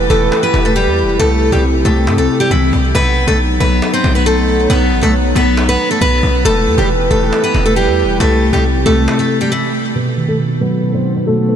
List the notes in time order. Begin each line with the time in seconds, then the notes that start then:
Already playing: E3 E4 G4 B4
0.10 E1 A3 A4, cajon bass
0.32 cajon slap
0.43 B3 B4, cajon slap
0.54 E1, cajon bass, cajon slap
0.65 A3 A4, cajon slap
0.76 G3 G4, cajon slap
0.87 E2, cajon slap
0.98 cajon slap
1.03 E1
1.19 C2 C3 A3 C4 A4, cajon bass
1.30 cajon slap
1.42 cajon slap
1.52 C2 G3 G4, cajon bass
1.64 cajon slap
1.74 B1, cajon slap
1.85 C2 A3 A4, cajon bass
2.07 G2, cajon slap
2.18 C2 A3 A4, cajon slap
2.29 cajon slap
2.40 G3 G4, cajon slap
2.51 C2 E3 E4, cajon bass
2.62 cajon slap
2.73 C2, cajon bass
2.95 B1 F#3 B3 D#4 B4, cajon bass
3.06 cajon slap
3.17 cajon slap
3.27 B1 A3 A4, cajon bass
3.39 cajon slap
3.49 cajon slap
3.60 B1 B3 B4, cajon bass
3.82 cajon slap
3.93 C4 C5, cajon slap
4.04 B1, cajon bass, cajon slap
4.15 B3 B4, cajon slap
4.26 A3 A4
4.37 cajon slap
4.48 cajon slap
4.70 B1 B3 B4, cajon bass
4.81 cajon slap
4.92 A1
5.03 B1 A3 A4, cajon bass
5.14 cajon slap
5.24 cajon slap
5.35 B1 B3 B4, cajon bass
5.57 cajon slap
5.68 B3 B4, cajon slap
5.79 cajon slap
5.90 A3 A4, cajon slap
6.01 B1 B3 B4, cajon bass
6.12 cajon slap
6.23 B1, cajon bass
6.45 E1 E3 A3 E4 G4 A4 B4, cajon bass
6.56 cajon slap
6.67 E2, cajon slap
6.78 E1 G3 G4, cajon bass
6.89 cajon slap
6.99 cajon slap
7.11 E1 A3 A4, cajon bass
7.33 cajon slap
7.43 B3 B4, cajon slap
7.54 E1, cajon bass, cajon slap
7.65 A3 A4, cajon slap
7.76 G3 G4, cajon slap
7.87 E2, cajon slap
7.98 cajon slap
8.04 E1
8.20 C2 C3 A3 C4 A4, cajon bass
8.31 cajon slap
8.42 cajon slap
8.53 C2 G3 G4, cajon bass
8.64 cajon slap
8.75 B1, cajon slap
8.86 C2 A3 A4, cajon bass
9.08 cajon slap
9.19 A3 A4, cajon slap
9.29 cajon slap
9.40 G3 G4, cajon slap
9.52 E3 E4, cajon slap
9.62 cajon slap
9.73 cajon slap
9.95 B2 B3 D#4 F#4 B4
10.17 D#3
10.28 A3 A4
10.39 B2
10.61 F#3 B3 B4
10.83 B2
10.94 C4 C5
11.04 B3
11.16 B3 B4
11.27 B2 A3 A4
11.49 B4